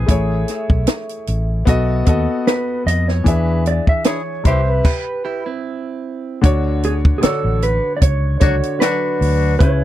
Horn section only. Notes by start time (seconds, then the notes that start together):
4.06 D4 E4 G#4
4.45 C4 E4 G4
8.41 F#3 D4 F#4
8.81 F#3 D4 F#4